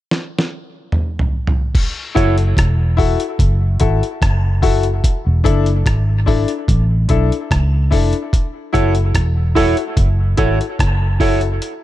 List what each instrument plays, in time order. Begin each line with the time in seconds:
0.11 snare
0.39 snare
0.92 mid tom
1.19 floor tom
1.47 floor tom
1.75 kick, crash
2.15 fingered electric bass F#1, grand piano E4 F#4 A4, clean electric guitar E4 A4 C#5, kick, closed hi-hat
2.38 closed hi-hat
2.57 fingered electric bass E1, kick, cross-stick, closed hi-hat
2.97 grand piano E4 F#4 A4, kick, open hi-hat
3.20 closed hi-hat
3.39 fingered electric bass F#1, kick, closed hi-hat
3.80 fingered electric bass G#1, grand piano E4 F#4 A4, kick, closed hi-hat
4.03 closed hi-hat
4.22 fingered electric bass F#1, kick, cross-stick, closed hi-hat
4.62 grand piano E4 F#4 A4, kick, open hi-hat
4.83 closed hi-hat
5.04 kick, closed hi-hat
5.26 fingered electric bass E1
5.44 fingered electric bass F#1, grand piano D4 E4 A4, kick, closed hi-hat
5.66 closed hi-hat
5.86 fingered electric bass G#1, kick, cross-stick, closed hi-hat
6.26 grand piano D4 E4 A4, kick, open hi-hat
6.48 closed hi-hat
6.68 fingered electric bass A1, kick, closed hi-hat
7.09 fingered electric bass B1, grand piano D4 E4 A4, kick, closed hi-hat
7.32 closed hi-hat
7.51 fingered electric bass C#2, kick, cross-stick, closed hi-hat
7.91 grand piano D4 E4 A4, kick, open hi-hat
8.13 closed hi-hat
8.33 kick, closed hi-hat
8.73 fingered electric bass F#1, grand piano E4 F#4 A4, clean electric guitar E4 A4 C#5, kick, closed hi-hat
8.95 closed hi-hat
9.15 fingered electric bass E1, kick, cross-stick, closed hi-hat
9.55 grand piano E4 F#4 A4, clean electric guitar E4 A4 C#5, kick, open hi-hat
9.77 closed hi-hat
9.97 fingered electric bass F#1, kick, closed hi-hat
10.37 fingered electric bass G#1, grand piano E4 F#4 A4, clean electric guitar E4 A4 C#5, kick, closed hi-hat
10.61 closed hi-hat
10.79 fingered electric bass F#1, kick, cross-stick, closed hi-hat
11.20 clean electric guitar E4 A4 C#5, grand piano E4 F#4 A4, kick, open hi-hat
11.41 closed hi-hat
11.62 closed hi-hat